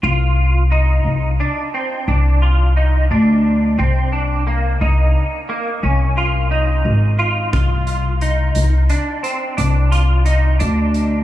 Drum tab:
HH |-----------|-----------|xxxxxxxxxxx|
BD |-----------|-----------|o----------|